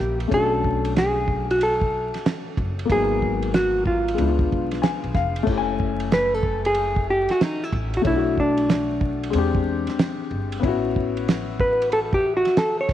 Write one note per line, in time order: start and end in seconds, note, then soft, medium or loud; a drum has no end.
0.00 0.26 A#1 medium
0.00 0.26 A#3 medium
0.00 0.28 C#4 medium
0.00 0.29 E4 medium
0.00 0.18 G4 medium
0.00 0.31 G4 medium
0.00 snare soft
0.20 ride medium
0.28 2.84 A3 medium
0.28 2.85 C#4 medium
0.28 kick loud
0.32 2.10 B1 loud
0.32 2.86 D4 medium
0.32 2.88 F#4 medium
0.32 0.98 A4 loud
0.32 ride medium
0.64 kick medium
0.85 ride medium
0.97 1.47 G#4 medium
0.97 snare loud
0.97 hi-hat pedal soft
0.97 ride medium
1.28 kick medium
1.51 1.62 F#4 medium
1.51 ride medium
1.61 2.55 A4 medium
1.61 ride medium
1.81 kick medium
2.14 snare soft
2.14 ride medium
2.26 snare loud
2.26 hi-hat pedal soft
2.26 ride medium
2.57 2.83 F#1 medium
2.57 kick medium
2.79 ride medium
2.85 4.14 A#3 medium
2.85 4.15 B3 medium
2.90 4.15 G#1 medium
2.90 4.18 F#3 medium
2.90 4.17 D#4 medium
2.90 3.51 G#4 loud
2.90 kick loud
2.90 ride medium
3.22 kick medium
3.43 ride medium
3.54 3.87 F#4 medium
3.54 snare loud
3.54 hi-hat pedal soft
3.54 ride medium
3.86 5.12 F4 medium
3.86 kick medium
4.08 ride medium
4.14 5.43 G#3 medium
4.14 5.44 B3 medium
4.18 4.45 C#2 loud
4.18 5.45 D4 medium
4.18 4.29 E4 medium
4.18 ride medium
4.28 5.50 F4 medium
4.39 kick medium
4.52 4.78 B1 medium
4.52 kick medium
4.71 snare soft
4.71 ride medium
4.82 5.12 G#5 medium
4.82 snare loud
4.82 hi-hat pedal soft
4.82 ride medium
5.04 5.16 B1 medium
5.15 5.41 F1 medium
5.15 5.45 F5 medium
5.15 kick loud
5.15 snare soft
5.36 ride medium
5.43 7.99 A3 medium
5.43 8.01 C#4 medium
5.43 kick loud
5.43 crash medium
5.47 7.26 F#1 medium
5.47 8.02 E4 medium
5.47 5.58 G4 medium
5.57 8.07 G#5 medium
5.80 kick medium
6.00 ride medium
6.12 6.34 B4 loud
6.12 snare loud
6.12 hi-hat pedal soft
6.12 ride medium
6.34 6.66 A4 medium
6.43 kick medium
6.65 7.06 G#4 medium
6.65 ride medium
6.75 ride medium
6.96 kick medium
7.10 7.31 G4 loud
7.29 7.43 F#4 medium
7.29 snare soft
7.29 ride medium
7.41 7.63 D#4 medium
7.41 snare loud
7.41 hi-hat pedal soft
7.41 ride medium
7.63 7.96 E4 medium
7.72 7.99 A1 medium
7.72 kick medium
7.94 8.01 F#4 medium
7.94 ride medium
8.02 9.30 B1 loud
8.02 9.30 A3 medium
8.02 9.31 C#5 medium
8.02 kick loud
8.02 ride medium
8.07 9.33 D4 medium
8.07 8.40 E4 medium
8.07 8.16 E4 medium
8.16 9.37 F#4 medium
8.38 9.96 D4 medium
8.38 kick medium
8.58 ride medium
8.70 snare loud
8.70 hi-hat pedal medium
8.70 ride medium
9.01 kick medium
9.23 ride medium
9.30 9.86 E2 medium
9.30 10.59 G#3 medium
9.30 10.60 C4 medium
9.30 ride medium
9.36 10.62 D4 medium
9.36 10.63 G4 medium
9.55 kick medium
9.87 snare soft
9.87 ride medium
9.99 snare loud
9.99 hi-hat pedal soft
9.99 ride medium
10.31 10.57 G1 medium
10.52 ride medium
10.60 12.42 A1 loud
10.60 12.93 B3 medium
10.60 12.93 C#4 medium
10.60 kick loud
10.64 12.93 E4 medium
10.64 12.93 F#4 medium
10.64 ride medium
10.96 kick medium
11.17 ride medium
11.28 snare loud
11.28 hi-hat pedal medium
11.28 ride medium
11.59 11.93 B4 medium
11.59 kick medium
11.82 ride medium
11.92 11.99 A4 medium
11.92 ride medium
12.13 12.36 G4 medium
12.13 kick medium
12.37 12.58 F#4 medium
12.45 snare soft
12.45 ride medium
12.57 12.80 A4 loud
12.57 snare loud
12.57 hi-hat pedal soft
12.57 ride medium
12.81 12.93 C#5 medium
12.89 12.93 F#1 loud
12.89 kick medium
12.89 snare soft